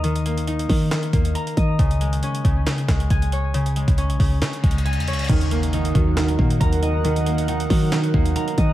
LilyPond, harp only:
\new Staff \with { instrumentName = "Harp" } { \time 4/4 \key ees \minor \tempo 4 = 137 <ees bes ees'' bes''>8 bes8 ees'8 ees8 ees8 bes8 bes''8 ees''8 | des8 aes8 des'8 des8 des8 aes8 aes''8 des''8 | des8 aes8 des'8 des8 des8 aes8 aes''8 des''8 | ees8 bes8 ees'8 ees8 ees8 bes8 bes''8 ees''8 |
ees8 bes8 ees'8 ees8 ees8 bes8 bes''8 ees''8 | }